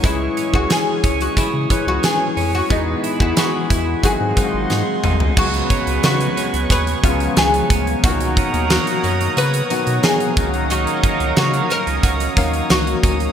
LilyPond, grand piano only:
\new Staff \with { instrumentName = "Grand piano" } { \clef bass \time 4/4 \key gis \minor \tempo 4 = 90 <e gis cis' gis'>8. <e gis cis' gis'>4. r16 <e gis cis' b'>4~ <e gis cis' b'>16 r16 | <e gis b gis'>8. <e gis b gis'>4~ <e gis b gis'>16 <dis gis bis fis'>8 <dis gis bis eis' fis'>4~ <dis gis bis eis' fis'>16 r16 | \key ges \major <des ges aes ces' ges'>4.~ <des ges aes ces' ges'>16 r8. <des f ges aes ces' f'>4~ <des f ges aes ces' f'>16 r16 | <ces ees ges bes ges'>4.~ <ces ees ges bes ges'>16 r8. <ces ees ges ges'>4 <ees ges aes bes des' ges'>8~ |
<ees ges aes bes des' ges'>4~ <ees ges aes bes des' ges'>16 r4 r16 <ees ges bes des' f''>4~ <ees ges bes des' f''>16 r16 | }